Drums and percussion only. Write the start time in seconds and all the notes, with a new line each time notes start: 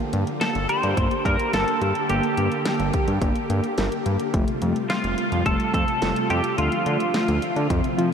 0.13 closed hi-hat
0.27 closed hi-hat
0.41 snare, closed hi-hat
0.55 closed hi-hat
0.69 closed hi-hat
0.83 closed hi-hat
0.97 kick, closed hi-hat
1.11 closed hi-hat
1.25 kick, closed hi-hat
1.39 closed hi-hat
1.53 snare, closed hi-hat
1.68 closed hi-hat
1.82 closed hi-hat
1.95 closed hi-hat
2.10 closed hi-hat
2.23 closed hi-hat
2.37 closed hi-hat
2.52 closed hi-hat
2.65 snare, closed hi-hat
2.80 closed hi-hat
2.94 kick, closed hi-hat
3.08 closed hi-hat
3.22 kick, closed hi-hat
3.36 closed hi-hat
3.50 closed hi-hat
3.64 closed hi-hat
3.78 snare, closed hi-hat
3.92 closed hi-hat
4.06 closed hi-hat
4.20 closed hi-hat
4.34 kick, closed hi-hat
4.48 closed hi-hat
4.62 closed hi-hat
4.76 closed hi-hat
4.90 snare, closed hi-hat
5.04 closed hi-hat
5.18 closed hi-hat
5.32 closed hi-hat
5.46 kick, closed hi-hat
5.60 closed hi-hat
5.74 kick, closed hi-hat
5.88 closed hi-hat
6.02 snare, closed hi-hat
6.16 closed hi-hat
6.30 closed hi-hat
6.44 closed hi-hat
6.58 closed hi-hat
6.72 closed hi-hat
6.86 closed hi-hat
7.00 closed hi-hat
7.14 snare, closed hi-hat
7.28 closed hi-hat
7.42 closed hi-hat
7.56 closed hi-hat
7.70 kick, closed hi-hat
7.84 closed hi-hat
7.99 closed hi-hat